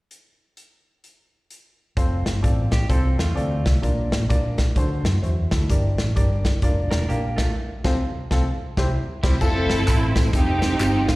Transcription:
0.11 closed hi-hat
0.57 closed hi-hat
1.04 closed hi-hat
1.50 closed hi-hat
1.97 F1 C4 F4 A4 C5, kick, closed hi-hat
2.26 G1, snare, closed hi-hat
2.43 A1 C4 F4 A4 D5, kick, closed hi-hat
2.72 G4, kick, snare, closed hi-hat
2.89 C2 C4 F4 A4 C5, kick, closed hi-hat
3.19 E2 A3 F4, snare, closed hi-hat
3.35 D2 C4 F4 A4 D5, closed hi-hat
3.66 C2, kick, snare, closed hi-hat
3.82 A#1 A#2 D4 F4 A#4 D5, kick, closed hi-hat
4.12 A1, snare, closed hi-hat
4.29 A#1 D4 F4 A#4 D5, kick, closed hi-hat
4.58 kick, snare, closed hi-hat
4.76 D2 D3 D4 F#4 A4 C5, kick, closed hi-hat
5.05 F#2, snare, closed hi-hat
5.23 E2 F#4 C5 E5, closed hi-hat
5.51 D2 E4 A4, kick, snare, closed hi-hat
5.70 G1 G2 D4 G4 A#4 D5, kick, closed hi-hat
5.98 A1, snare, closed hi-hat
6.15 G1 D4 G4 A#4 D5, kick, closed hi-hat
6.45 kick, snare, closed hi-hat
6.62 F1 D4 F4 A#4 D5, kick, closed hi-hat
6.91 E1 D4 A#4, snare, closed hi-hat
7.09 A#1 A#3 D4 F4 G4 A#4 F5, closed hi-hat
7.36 A3 F4, kick, snare, closed hi-hat
7.84 C2 C3 C4 F4 A4 C5, kick, snare, crash
8.31 C2 C4 F4 A4, kick, snare
8.77 C2 C3 C4 E4 G4 C5, kick, snare
9.23 C2 G3 C4 E4 G4 C5, kick, snare, crash
9.41 F1 C4 E4 F4 A4, kick, crash, tambourine
9.70 G1, snare, closed hi-hat, tambourine
9.88 A1 C4 E4 F4 A4, kick, clap, closed hi-hat, tambourine
10.15 kick, snare, closed hi-hat, tambourine
10.33 F1 C4 D#4 F4 G4 A4, kick, closed hi-hat, tambourine
10.62 snare, closed hi-hat, tambourine
10.80 G1 C4 D#4 F4 G4, clap, closed hi-hat, tambourine
11.07 A1 F4, kick, snare, closed hi-hat, tambourine

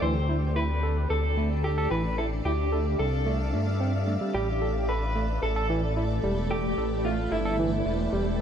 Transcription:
Already playing: C4 A4 D5 G5
0.02 D2 E3 D4 C5
0.29 E4
0.56 E4 B4
0.83 A4
1.10 D2 A4
1.23 E5
1.37 A3
1.64 G4 A4
1.73 F5
1.78 A4
1.91 A1 E3 B4
2.18 E4 A4
2.45 D2 E4 G4
2.72 A4
2.99 C2 A4
3.26 A3
3.53 G2 A3
3.80 C4
4.08 A3
4.21 G3
4.35 A1 G3 A3 G4
4.40 A4
4.62 A4 B4
4.89 A4 B4
5.16 A3
5.43 A1 A4
5.56 A4
5.70 E3 C5
5.97 E4
6.23 E1 G3 G5
6.51 G4 A4
6.78 A1 A4
7.05 A3 F4
7.32 G1 E4 A4
7.45 A4
7.59 E3
7.86 E1 E4
8.13 E1 G3

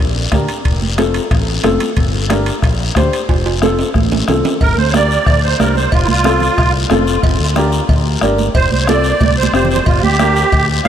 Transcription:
0.00 A#1, high conga, long guiro
0.32 D2 D4 G4 A#4, bombo low, bombo rim, high conga, high timbale, short guiro
0.48 high timbale, short guiro
0.65 F1, bombo low, high conga, high timbale, long guiro
0.82 high conga
0.98 C4 F4 A4, bombo rim, high conga, high timbale, short guiro
1.14 high timbale, short guiro
1.31 A1, bombo low, bombo rim, high conga, high timbale, long guiro
1.64 F1 C4 F4 A4, bombo rim, high conga, high timbale, low timbale, short guiro
1.80 high conga, high timbale, short guiro
1.97 G1, bombo low, high conga, high timbale, long guiro
2.29 D4 G4 A#4, bombo rim, high conga, high timbale, short guiro
2.46 high timbale, short guiro
2.62 A#1, bombo low, bombo rim, high conga, high timbale, long guiro
2.95 D2 D4 G4 C5, bombo low, bombo rim, high conga, high timbale, short guiro
3.13 high timbale, short guiro
3.29 F1, bombo low, high conga, high timbale, long guiro
3.46 high timbale
3.62 C4 F4 A4, bombo rim, high conga, short guiro
3.79 low timbale, short guiro
3.94 A1, bombo low, bombo rim, high conga, long guiro
4.12 high conga, low timbale
4.28 C2 C4 F4 A4, bombo rim, low conga, low timbale, short guiro
4.45 low conga, low timbale, short guiro
4.61 G1 A#4, bombo low, cowbell, high conga, long guiro
4.77 D2 C5, high conga
4.91 D4 C#5, bombo rim, high conga
4.95 G4 A#4 D5, short guiro
5.11 short guiro
5.26 D2, bombo low, bombo rim, cowbell, high conga, long guiro
5.44 C5
5.60 C2 D4 G4 A#4, bombo rim, high conga, short guiro
5.76 C5, high conga, short guiro
5.92 F1 F4, bombo low, cowbell, high conga, long guiro
6.05 C2 E4, high conga
6.09 F4
6.24 C4 F4 A4, bombo rim, high conga, short guiro
6.40 low conga, short guiro
6.58 C2, bombo low, bombo rim, cowbell, high conga, long guiro
6.90 F1 C4 F4 A4, bombo rim, high conga, low conga, low timbale, short guiro
7.07 short guiro
7.23 G1, bombo low, cowbell, high conga, long guiro
7.40 D2
7.56 D4 G4 A#4, bombo rim, high conga, short guiro
7.72 short guiro
7.89 D2, bombo low, cowbell, high conga, long guiro
8.21 G1 D4 G4 A#4, bombo rim, high conga, short guiro
8.38 high conga, short guiro
8.54 F1 C5, bombo low, cowbell, high conga, long guiro
8.72 C2 C5, high conga
8.84 C#5, bombo rim
8.88 C4 F4 A4 D5, high conga, short guiro
9.04 short guiro
9.21 C2, bombo low, cowbell, high conga, long guiro
9.37 C5
9.43 high conga
9.53 F1 C4 F4 G4 C5, bombo rim, short guiro
9.65 low conga
9.70 C5, short guiro
9.76 low conga
9.86 G1 F4, bombo low, cowbell, high conga, long guiro
9.98 F#4
10.03 D2 G4, high conga
10.19 D4 G4 A#4, bombo rim, high conga, short guiro
10.36 short guiro
10.52 D2, bombo low, cowbell, high conga, long guiro
10.84 D4 F5

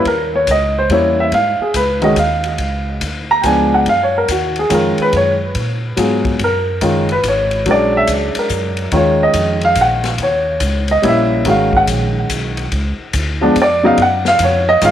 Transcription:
0.05 D#2 A#4, kick, ride
0.35 C#5
0.47 C#2 D#5, kick, hi-hat pedal, ride
0.78 C5
0.89 E2 G3 A#3 C#4 E4 C#5, kick, ride
1.20 E5
1.32 G#2 F5, kick, ride
1.59 G#4, muted upright bass stroke
1.74 C#2 B4, kick, hi-hat pedal, ride
2.02 D#3 G#3 C#4 F#4 D#5, ride
2.16 D#2 F5, kick, hi-hat pedal, ride
2.44 ride
2.58 C#2, kick, ride
3.01 D2, kick, hi-hat pedal, ride
3.31 A#5
3.42 C#2 F3 G#3 B3 D4 G5, kick, hi-hat pedal, ride
3.46 G#5
3.74 F#5
3.86 F#2 F5, kick, ride
4.03 C#5
4.18 A#4
4.28 D#2 F#4, kick, hi-hat pedal, ride
4.56 G#4, ride
4.70 F2 D#3 G#3 C#4 F4, kick, hi-hat pedal, ride
4.74 A#4
4.98 B4, muted upright bass stroke, ride
5.13 F#2 C#5, kick, ride
5.55 A#2, kick, ride
5.97 G#2 F#3 B3 F4 G#4, kick, hi-hat pedal, ride
6.25 kick, ride
6.39 F#2, kick, ride
6.44 A#4
6.81 F#1 D#3 G#3 C#4 F4, kick, hi-hat pedal, ride
7.09 B4, ride
7.23 G#1, kick, hi-hat pedal, ride
7.28 C#5
7.51 ride
7.66 A#1 F#3 G#3 C#4 D4, kick, ride
7.71 D5
7.97 E5
8.07 C#2, kick, hi-hat pedal, ride
8.35 muted upright bass stroke, ride
8.39 A#4
8.49 F#2, kick, hi-hat pedal
8.77 ride
8.92 D#2 D#3 G#3 C#4 F4, kick, ride
8.97 C#5
9.23 D#5
9.34 F2, kick, hi-hat pedal, ride
9.61 F5, ride
9.75 A#1, kick, hi-hat pedal, ride
9.81 F#5
10.04 snare, ride
10.18 D#2, kick, ride
10.23 C#5
10.60 C#2, kick, hi-hat pedal, ride
10.88 D#5, ride
11.02 A#1 G3 A#3 C#4 E4, kick, ride
11.08 E5
11.45 G#1 D#3 G#3 C#4 F#4, kick, ride
11.50 F5
11.73 F#5, kick
11.87 A#1, kick, hi-hat pedal, ride
12.29 B1, kick, hi-hat pedal, ride
12.57 ride
12.72 C#2, kick, ride
12.99 muted upright bass stroke
13.13 D2, kick, hi-hat pedal, ride
13.41 F3 G#3 B3 D4
13.56 F2, kick, ride
13.62 D5
13.83 C#3 F#3 B3 D#4 F5
13.97 F#2, kick, ride
14.02 F#5
14.25 F5, snare
14.39 F2, kick, hi-hat pedal, ride
14.44 C#5
14.69 D#5
14.81 G#2 D#3 G#3 C#4 F4 F5, kick, hi-hat pedal, ride

